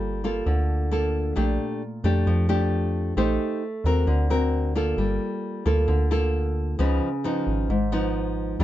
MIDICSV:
0, 0, Header, 1, 3, 480
1, 0, Start_track
1, 0, Key_signature, -2, "major"
1, 0, Tempo, 451807
1, 1454, Time_signature, 4, 2, 24, 8
1, 9178, End_track
2, 0, Start_track
2, 0, Title_t, "Nylon-string guitar"
2, 0, Program_c, 0, 24
2, 0, Note_on_c, 0, 55, 53
2, 0, Note_on_c, 0, 58, 53
2, 0, Note_on_c, 0, 65, 50
2, 0, Note_on_c, 0, 69, 56
2, 219, Note_off_c, 0, 58, 0
2, 222, Note_off_c, 0, 65, 0
2, 224, Note_off_c, 0, 69, 0
2, 255, Note_on_c, 0, 58, 50
2, 261, Note_on_c, 0, 65, 58
2, 265, Note_on_c, 0, 69, 62
2, 475, Note_off_c, 0, 55, 0
2, 494, Note_on_c, 0, 50, 52
2, 937, Note_off_c, 0, 58, 0
2, 938, Note_off_c, 0, 65, 0
2, 942, Note_off_c, 0, 69, 0
2, 972, Note_on_c, 0, 58, 52
2, 979, Note_on_c, 0, 65, 48
2, 984, Note_on_c, 0, 69, 51
2, 1415, Note_off_c, 0, 58, 0
2, 1419, Note_off_c, 0, 65, 0
2, 1420, Note_off_c, 0, 69, 0
2, 1431, Note_off_c, 0, 50, 0
2, 1441, Note_on_c, 0, 46, 54
2, 1447, Note_on_c, 0, 57, 50
2, 1449, Note_on_c, 0, 62, 56
2, 1455, Note_on_c, 0, 67, 58
2, 1927, Note_off_c, 0, 57, 0
2, 1929, Note_off_c, 0, 62, 0
2, 1932, Note_off_c, 0, 67, 0
2, 2169, Note_on_c, 0, 57, 56
2, 2174, Note_on_c, 0, 62, 55
2, 2181, Note_on_c, 0, 67, 58
2, 2384, Note_off_c, 0, 46, 0
2, 2412, Note_on_c, 0, 53, 55
2, 2614, Note_off_c, 0, 57, 0
2, 2617, Note_off_c, 0, 62, 0
2, 2619, Note_off_c, 0, 67, 0
2, 2644, Note_on_c, 0, 57, 55
2, 2645, Note_on_c, 0, 62, 55
2, 2650, Note_on_c, 0, 67, 67
2, 3332, Note_off_c, 0, 57, 0
2, 3332, Note_off_c, 0, 62, 0
2, 3334, Note_off_c, 0, 67, 0
2, 3350, Note_off_c, 0, 53, 0
2, 3368, Note_on_c, 0, 57, 54
2, 3372, Note_on_c, 0, 67, 52
2, 3375, Note_on_c, 0, 63, 54
2, 3379, Note_on_c, 0, 72, 58
2, 3851, Note_off_c, 0, 63, 0
2, 3852, Note_off_c, 0, 67, 0
2, 3854, Note_off_c, 0, 72, 0
2, 4095, Note_on_c, 0, 60, 55
2, 4097, Note_on_c, 0, 66, 50
2, 4105, Note_on_c, 0, 70, 60
2, 4308, Note_off_c, 0, 57, 0
2, 4326, Note_on_c, 0, 50, 58
2, 4537, Note_off_c, 0, 60, 0
2, 4537, Note_off_c, 0, 66, 0
2, 4542, Note_off_c, 0, 70, 0
2, 4570, Note_on_c, 0, 60, 51
2, 4573, Note_on_c, 0, 66, 52
2, 4575, Note_on_c, 0, 70, 63
2, 5014, Note_off_c, 0, 60, 0
2, 5015, Note_off_c, 0, 66, 0
2, 5017, Note_off_c, 0, 70, 0
2, 5051, Note_on_c, 0, 58, 63
2, 5057, Note_on_c, 0, 65, 56
2, 5064, Note_on_c, 0, 69, 59
2, 5267, Note_off_c, 0, 50, 0
2, 5291, Note_on_c, 0, 55, 57
2, 5975, Note_off_c, 0, 58, 0
2, 5978, Note_off_c, 0, 65, 0
2, 5982, Note_off_c, 0, 69, 0
2, 6009, Note_on_c, 0, 58, 55
2, 6012, Note_on_c, 0, 65, 52
2, 6019, Note_on_c, 0, 69, 58
2, 6229, Note_off_c, 0, 55, 0
2, 6245, Note_on_c, 0, 50, 55
2, 6454, Note_off_c, 0, 58, 0
2, 6456, Note_off_c, 0, 65, 0
2, 6457, Note_off_c, 0, 69, 0
2, 6490, Note_on_c, 0, 58, 59
2, 6493, Note_on_c, 0, 65, 57
2, 6500, Note_on_c, 0, 69, 70
2, 7174, Note_off_c, 0, 58, 0
2, 7176, Note_off_c, 0, 65, 0
2, 7177, Note_off_c, 0, 69, 0
2, 7186, Note_off_c, 0, 50, 0
2, 7212, Note_on_c, 0, 53, 60
2, 7217, Note_on_c, 0, 49, 58
2, 7220, Note_on_c, 0, 59, 59
2, 7225, Note_on_c, 0, 63, 62
2, 7523, Note_off_c, 0, 53, 0
2, 7526, Note_off_c, 0, 59, 0
2, 7529, Note_off_c, 0, 63, 0
2, 7695, Note_on_c, 0, 53, 55
2, 7703, Note_on_c, 0, 59, 50
2, 7706, Note_on_c, 0, 63, 61
2, 8152, Note_off_c, 0, 49, 0
2, 8172, Note_off_c, 0, 53, 0
2, 8176, Note_off_c, 0, 59, 0
2, 8176, Note_off_c, 0, 63, 0
2, 8180, Note_on_c, 0, 44, 53
2, 8416, Note_on_c, 0, 53, 54
2, 8420, Note_on_c, 0, 59, 55
2, 8426, Note_on_c, 0, 63, 60
2, 9096, Note_off_c, 0, 53, 0
2, 9099, Note_off_c, 0, 59, 0
2, 9100, Note_off_c, 0, 63, 0
2, 9113, Note_off_c, 0, 44, 0
2, 9135, Note_on_c, 0, 51, 54
2, 9139, Note_on_c, 0, 55, 54
2, 9139, Note_on_c, 0, 62, 54
2, 9178, Note_off_c, 0, 51, 0
2, 9178, Note_off_c, 0, 55, 0
2, 9178, Note_off_c, 0, 62, 0
2, 9178, End_track
3, 0, Start_track
3, 0, Title_t, "FM bass"
3, 0, Program_c, 1, 39
3, 0, Note_on_c, 1, 31, 82
3, 448, Note_off_c, 1, 31, 0
3, 491, Note_on_c, 1, 38, 99
3, 1411, Note_off_c, 1, 38, 0
3, 1455, Note_on_c, 1, 34, 93
3, 1678, Note_off_c, 1, 34, 0
3, 2167, Note_on_c, 1, 41, 92
3, 2394, Note_off_c, 1, 41, 0
3, 2408, Note_on_c, 1, 41, 95
3, 3330, Note_off_c, 1, 41, 0
3, 3365, Note_on_c, 1, 33, 97
3, 3593, Note_off_c, 1, 33, 0
3, 4083, Note_on_c, 1, 39, 98
3, 4312, Note_off_c, 1, 39, 0
3, 4325, Note_on_c, 1, 38, 102
3, 5248, Note_off_c, 1, 38, 0
3, 5284, Note_on_c, 1, 31, 100
3, 5513, Note_off_c, 1, 31, 0
3, 6012, Note_on_c, 1, 38, 103
3, 6237, Note_off_c, 1, 38, 0
3, 6252, Note_on_c, 1, 38, 102
3, 7171, Note_off_c, 1, 38, 0
3, 7215, Note_on_c, 1, 37, 100
3, 7438, Note_off_c, 1, 37, 0
3, 7934, Note_on_c, 1, 32, 98
3, 8158, Note_off_c, 1, 32, 0
3, 8174, Note_on_c, 1, 32, 93
3, 9091, Note_off_c, 1, 32, 0
3, 9131, Note_on_c, 1, 39, 101
3, 9178, Note_off_c, 1, 39, 0
3, 9178, End_track
0, 0, End_of_file